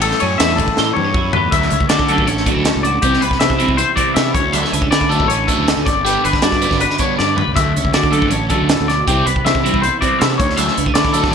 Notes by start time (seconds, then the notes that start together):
Already playing: A1 A2 G4
0.02 G3 A4, ride
0.11 snare
0.20 F#2 C#4 C#5, ride
0.38 E2 E3 E5, snare, ride
0.50 snare
0.56 A1 A4, kick, ride
0.68 kick
0.77 A2 G4, snare
0.93 E2 G2 B3 C#5, mid tom
1.05 C#4
1.14 F#2 E4, kick
1.33 E2 A2 G4 B4, floor tom
1.51 D2 D3 F#3 A3 D4 E5, kick, closed hi-hat
1.62 snare
1.71 C#2 C#4, muted overdriven electric guitar stroke, closed hi-hat
1.80 kick
1.89 D3 F#4 D5, muted overdriven electric guitar stroke, snare, closed hi-hat
1.99 kick
2.08 D3 F#3 A3 D4 A4, closed hi-hat
2.18 A1, kick
2.27 C#4 C#5, muted overdriven electric guitar stroke, closed hi-hat
2.37 snare
2.46 A2 D3 F#3 A3 D4 F#4 A4, kick, closed hi-hat
2.56 D2
2.65 C#4, muted overdriven electric guitar stroke, snare, closed hi-hat
2.76 C#2
2.83 F#4 D5, muted overdriven electric guitar stroke, closed hi-hat
3.02 C2 C3 G3 C4 E4 G4, kick, closed hi-hat
3.13 snare
3.21 C2 B4, muted overdriven electric guitar stroke, closed hi-hat
3.25 B3
3.31 kick, snare
3.40 C3 E3 C4 E5, muted overdriven electric guitar stroke, snare, closed hi-hat
3.50 kick
3.59 C3 G3 C4 E4, closed hi-hat
3.68 C2, kick
3.77 B3 C5, muted overdriven electric guitar stroke, closed hi-hat
3.96 C3 G3 C4 E4 D5, kick, closed hi-hat
4.14 C3 B3 E5, muted overdriven electric guitar stroke, snare, closed hi-hat
4.34 D2 C#5, muted overdriven electric guitar stroke, kick, closed hi-hat
4.53 D3 F#3 G3 A3 D4 E5, closed hi-hat
4.63 A3, snare
4.72 C#2 D3 B3, muted overdriven electric guitar stroke, closed hi-hat
4.81 C#4, kick
4.91 D3 E4 D5, muted overdriven electric guitar stroke, snare, closed hi-hat
5.01 kick
5.09 D3 F#3 A3 D4 A4, closed hi-hat
5.20 A1, kick
5.28 A2 C#4 C#5, muted overdriven electric guitar stroke, closed hi-hat
5.47 D3 F#3 A3 D4 A4, kick, closed hi-hat
5.59 D2
5.68 B3, muted overdriven electric guitar stroke, snare, closed hi-hat
5.77 D2 C#4
5.86 G1 G2 D5, muted overdriven electric guitar stroke, kick, snare, closed hi-hat
6.05 D3 G3 B3 D4 G4, closed hi-hat
6.23 G1 D3 B3 B4, muted overdriven electric guitar stroke, closed hi-hat
6.33 D4, kick, snare
6.42 G2 F#4 D5, muted overdriven electric guitar stroke, snare, closed hi-hat
6.52 kick, snare
6.62 D3 G3 B3 D4, closed hi-hat
6.71 G1, kick, snare
6.80 D3 B3 B4, muted overdriven electric guitar stroke, closed hi-hat
6.90 D4, snare
6.98 D3 G3 B3 D4 C#5, kick, closed hi-hat
7.18 G2 D4 D5, muted overdriven electric guitar stroke, snare
7.36 G2 B4, muted overdriven electric guitar stroke, floor tom
7.47 C#2
7.55 D2 D3 F#3 A3 D4 E5, kick, closed hi-hat
7.74 C#2 C#4, muted overdriven electric guitar stroke, closed hi-hat
7.85 kick
7.93 D3 F#4 D5, muted overdriven electric guitar stroke, snare, closed hi-hat
8.03 kick
8.12 D3 F#3 A3 D4 A4, closed hi-hat
8.22 A1, kick
8.30 C#4 C#5, muted overdriven electric guitar stroke, closed hi-hat
8.50 A2 D3 F#3 A3 D4 F#4 A4, kick, closed hi-hat
8.61 D2
8.69 A2, muted overdriven electric guitar stroke, snare, closed hi-hat
8.81 D2
8.88 B2 D5, muted overdriven electric guitar stroke, snare, closed hi-hat
9.07 C2 C3 G3 C4 E4 G4, kick, closed hi-hat
9.26 C2 B3 B4, muted overdriven electric guitar stroke, closed hi-hat
9.36 kick
9.45 C3 E3 C4 E5, muted overdriven electric guitar stroke, snare, closed hi-hat
9.55 kick
9.64 C3 G3 C4 E4, closed hi-hat
9.74 C2, kick
9.82 B3 C5, muted overdriven electric guitar stroke, closed hi-hat
10.01 C3 G3 C4 E4 D5, kick, closed hi-hat
10.19 C3 B3 E5, muted overdriven electric guitar stroke, snare, closed hi-hat
10.38 D2 C#5, muted overdriven electric guitar stroke, kick, closed hi-hat
10.50 snare
10.57 D3 F#3 G3 A3 D4 E5, closed hi-hat
10.68 A3, snare
10.77 C#2 D3 B3, muted overdriven electric guitar stroke, closed hi-hat
10.86 C#4, kick
10.94 D3 E4 D5, muted overdriven electric guitar stroke, snare, closed hi-hat
11.05 kick, snare
11.13 D3 F#3 A3 D4 A4, closed hi-hat
11.24 A1, kick, snare
11.31 C#5